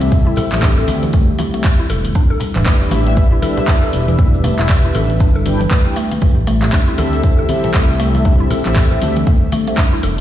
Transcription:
Already playing: C2 G3 A3 C4 E4 G4 A4 E5
0.01 A3, closed hi-hat, high conga, shaker
0.12 G4, kick, closed hi-hat, mid tom, shaker
0.27 E4
0.36 A4, open hi-hat, high conga, low conga, shaker
0.52 A1 C4 E4 G4 A4 E5, clap, closed hi-hat, shaker
0.62 D4, kick, clap, closed hi-hat, shaker
0.77 C4 E4 G4 A4 E5, shaker
0.88 D2 C4 E4 G4 A4 E5, open hi-hat, high conga, shaker
1.03 E3, closed hi-hat, shaker
1.13 A3, kick, closed hi-hat, shaker
1.39 A3, open hi-hat, high conga, shaker
1.54 A3 C4 E4 G4 A4 E5, closed hi-hat, shaker
1.64 kick, clap, closed hi-hat, shaker
1.79 E4
1.90 E1 A4, open hi-hat, shaker
2.05 open hi-hat, high conga, shaker
2.15 B3 D4 E4 B4, kick, closed hi-hat, mid tom, shaker
2.30 A4
2.40 open hi-hat, low conga, shaker
2.56 E1 E3 D4 E4 G4 B4 E5, clap, closed hi-hat, mid tom, shaker
2.66 A3, kick, clap, closed hi-hat, shaker
2.81 D4 E4 G4 B4 E5, shaker
2.91 A1 A3 D4 E4 G4 B4 E5, open hi-hat, high conga, shaker
3.06 A3, closed hi-hat, shaker
3.16 kick, closed hi-hat, shaker
3.32 E4
3.42 D4 E4 G4 A4 B4 E5, open hi-hat, high conga, shaker
3.57 closed hi-hat, low conga, shaker
3.68 D4, kick, clap, closed hi-hat, shaker
3.83 A4
3.93 E1, open hi-hat, shaker
4.08 E3, closed hi-hat, high conga, shaker
4.18 A3, kick, closed hi-hat, mid tom, shaker
4.33 shaker
4.44 A3, open hi-hat, high conga, low conga, shaker
4.59 E1 A3 D4 E4 G4 B4 E5, clap, closed hi-hat, shaker
4.69 kick, clap, closed hi-hat, shaker
4.84 D4 E4 G4 B4 E5, shaker
4.93 A1 D4 E4 G4 A4 B4 E5, open hi-hat, high conga, low conga, shaker
5.10 closed hi-hat, shaker
5.20 G1 D4, kick, closed hi-hat, high conga, shaker
5.35 A4, shaker
5.46 D4 E4 G4 B4 G5, open hi-hat, high conga, shaker
5.60 E3, closed hi-hat, shaker
5.71 A3, kick, clap, closed hi-hat, shaker
5.86 D4 E4 G4 B4 G5
5.96 A3, open hi-hat, shaker
6.11 A3, open hi-hat, high conga, shaker
6.22 A1 A3 C4 E4 A4, kick, closed hi-hat, mid tom, shaker
6.47 A3, open hi-hat, low conga, shaker
6.62 A3 C4 E4 G4 A4 E5, clap, closed hi-hat, mid tom, shaker
6.72 D4, kick, clap, closed hi-hat, shaker
6.87 C4 E4 G4 A4 E5, shaker
6.98 D2 C4 E4 G4 A4 E5, open hi-hat, high conga, shaker
7.13 closed hi-hat, shaker
7.23 kick, closed hi-hat, shaker
7.39 A4
7.49 C4 E4 G4 A4 E5, open hi-hat, high conga, shaker
7.64 E3, closed hi-hat, low conga, shaker
7.74 C2 A3, kick, clap, closed hi-hat, shaker
8.00 A3, open hi-hat, shaker
8.15 A3, closed hi-hat, high conga, shaker
8.25 D4, kick, closed hi-hat, mid tom, shaker
8.40 E4
8.50 A4, open hi-hat, high conga, low conga, shaker
8.66 A1 C4 E4 G4 A4 E5, clap, closed hi-hat, shaker
8.75 kick, clap, closed hi-hat, shaker
8.91 C4 E4 G4 A4 E5, shaker
9.02 D2 C4 E4 G4 A4 E5, open hi-hat, high conga, shaker
9.17 E3, closed hi-hat, shaker
9.27 A3, kick, closed hi-hat, shaker
9.52 A3, open hi-hat, high conga, shaker
9.67 A3 C4 E4 G4 A4 E5, closed hi-hat, shaker
9.78 D4, kick, clap, closed hi-hat, shaker
9.93 E4
10.03 E1 A4, open hi-hat, shaker

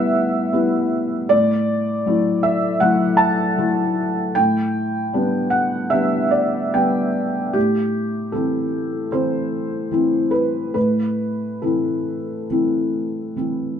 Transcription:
Already playing: A2 G3 B3 E4 E5 F#5
0.53 G3 B3 E4
1.29 A2 D5
2.06 F#3 A3 E4
2.43 E5
2.80 F#3 A3 E4 F#5
3.17 A5
3.58 F#3 A3 E4
4.35 A2 G5
5.13 G3 B3 D4
5.50 F#5
5.90 G3 B3 D4 E5
6.31 D5
6.74 G3 B3 D4 G5
7.53 A2 G4
8.32 E3 C4 E4 A4
9.12 E3 C4 E4 C5
9.91 E3 C4 E4
10.31 B4
10.74 A2 B4
11.62 E3 C4 E4 A4
12.50 E3 C4 E4
13.36 E3 C4 E4

